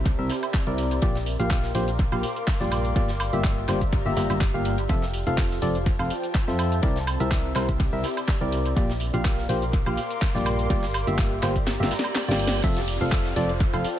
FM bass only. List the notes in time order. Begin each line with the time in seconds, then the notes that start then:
Already playing: C2
0.19 C2
0.67 C2
1.02 A#1
1.39 A#1
1.75 A#1
2.12 A#1
2.61 A#1
2.96 G1
3.33 G1
3.68 G1
4.06 G1
4.17 G1
4.30 G1
4.54 G1
4.89 F1
5.27 F1
5.62 F1
5.99 F1
6.48 F2
6.83 C2
7.20 C2
7.55 C2
7.93 C2
8.41 C2
8.76 A#1
9.14 A#1
9.49 A#1
9.86 A#1
10.35 A#1
10.70 G1
11.07 G1
11.43 G1
11.80 G1
12.28 G1
12.64 F1
13.01 F1
13.36 F1
13.74 F1